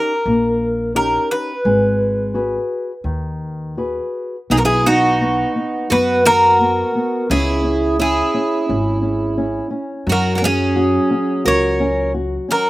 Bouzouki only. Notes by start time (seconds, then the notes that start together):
Already playing: A#4
0.96 A#4
1.31 B4
4.51 G#4
4.58 A#4
4.65 G#4
4.86 F#4
5.92 B4
6.26 A#4
7.31 G#4
8.01 G#4
10.12 A#4
10.38 A#4
10.45 G#4
11.48 C#5
12.52 A#4